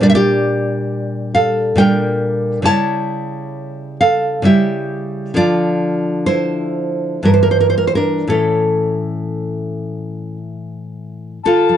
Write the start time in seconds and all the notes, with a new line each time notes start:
0.00 A#2 G3 D4 D5
0.10 E5
0.15 G4 D5
1.35 A4 F5
1.75 A#2 G3 D4 G5
1.80 A#4
2.62 C#3 G3 E4 A5
2.66 C#5
4.01 A4 F5
4.42 C#3 G3 E4 E5
4.46 G4
5.34 D3 F3 D4 F4 D5
6.26 E4 C5
7.23 G2 E3 E4 A#4
7.34 C5
7.43 A#4
7.51 C5
7.60 A#4
7.70 C5
7.78 A#4
7.87 C5
7.95 D4 A#4
8.27 A2 E3 C#4 A4
11.44 D3 F4 A4 A5
11.69 F3